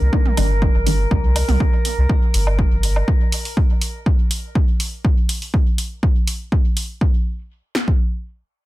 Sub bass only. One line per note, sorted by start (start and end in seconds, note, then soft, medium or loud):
0.01 0.09 C2 medium
0.37 0.69 G1 loud
0.75 1.06 G1 medium
1.11 1.43 C2 medium
1.49 1.57 C2 loud
1.98 2.06 C2 medium
2.34 2.66 G1 loud
2.71 3.02 G1 medium